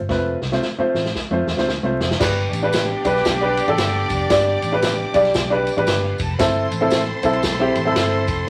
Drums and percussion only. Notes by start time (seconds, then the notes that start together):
0.09 kick, snare
0.42 snare
0.52 snare
0.63 snare
0.95 snare
1.05 snare
1.15 kick, snare
1.47 snare
1.58 snare
1.69 snare
2.01 snare
2.11 snare
2.20 kick, snare, crash, tambourine
2.53 ride, tambourine
2.72 snare, ride, tambourine
3.05 kick, ride, tambourine
3.16 snare
3.25 kick, snare, ride, tambourine
3.57 ride, tambourine
3.68 ride
3.78 snare, ride, tambourine
4.10 kick, ride, tambourine
4.30 kick, snare, ride, tambourine
4.62 ride, tambourine
4.82 snare, ride, tambourine
5.14 kick, ride, tambourine
5.25 snare, ride
5.34 kick, snare, ride, tambourine
5.67 ride, tambourine
5.78 ride
5.87 snare, ride, tambourine
6.18 kick, ride, tambourine
6.39 kick, snare, ride, tambourine
6.71 ride, tambourine
6.90 snare, ride, tambourine
7.23 kick, ride, tambourine
7.33 ride
7.43 kick, snare, ride, tambourine
7.75 ride, tambourine
7.96 snare, ride, tambourine
8.27 kick, ride, tambourine